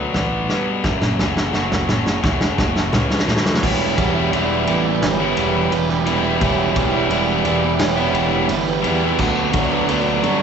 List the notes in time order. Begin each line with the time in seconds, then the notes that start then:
Already playing: D2 B2 D3 F#3 B3 D4 B4 D5
0.14 A1 B2 F#3 B3 D4 B4, snare, floor tom
0.48 G2 B2 F#3 B3, snare
0.83 F#1 F#2 C#3 F#3 E4 A4 E5, kick, snare, floor tom
1.01 snare, mid tom
1.19 F#2 C#3 E3 F#3, snare, floor tom
1.37 snare
1.53 F#1 F#2 C#3 F#3 A3 F#5, snare
1.72 snare, floor tom
1.88 F#2 C#3 F#3, snare, mid tom
2.06 snare
2.22 E1 F#2 C#3 E3 F#3 E5, kick, snare, floor tom
2.41 snare
2.58 F#1 F#2 C#3 F#3 A3, kick, snare, floor tom
2.76 snare
2.93 C#2 F#2 C#3 F#3 C#4 B4, snare, floor tom, mid tom
3.10 snare
3.19 snare
3.27 D2 F#2 C#3 F#3 A3, snare, mid tom
3.37 snare
3.46 snare
3.54 snare
3.62 E1 E3 G3 B3 E4 B4 C#5 G5, kick, crash
3.97 E1 E3 G3 B3 E4, kick, ride
4.15 G3 B3 E4
4.32 E1 E3 G3 B3 E4 D5, ride
4.67 A1 E3 G3 B3 E4, ride
4.85 G3 B3 E4, muted overdriven electric guitar stroke
5.02 G1 B3 C#5, snare, ride
5.20 G3 B3 E4
5.36 E1 E3 G3 B3 E4, ride
5.54 E3 G3 B3 E4
5.71 E1 E3 G3 B3 E4 B4, muted overdriven electric guitar stroke, ride
5.88 G3 B3 E4, snare
6.06 E3 G3 B3 E4, ride
6.24 G3 B3 E4
6.41 E1 E3 G3 B3 E4 C#5, kick, ride
6.75 E1 E3 G3 B3 E4, kick, ride
6.92 G3 B3 E4
7.10 E1 E3 G3 B3 E4 D5, ride
7.44 E1 E3 G3 B3 E4, ride
7.62 G3 B3 E4, muted overdriven electric guitar stroke
7.79 E1 B3 C#5, snare, ride
7.96 G3 B3 E4
8.13 E1 E3 G3 B3 E4, ride
8.30 E3 G3 B3 E4
8.48 G1 E3 G3 B4, muted overdriven electric guitar stroke, ride
8.52 B3 E4
8.67 G3 B3 E4
8.82 E2 E3 G3 B3 E4, ride
9.00 G3 B3 E4
9.17 D2 D3 F#3 B3 D4 B4 F#5, kick, crash
9.52 D2 D3 F#3 B3, kick, ride
9.56 D4
9.70 F#3 B3 D4
9.88 D2 D3 F#3 B3 D4 D5, ride
10.23 G2 D3 F#3 B3 D4, ride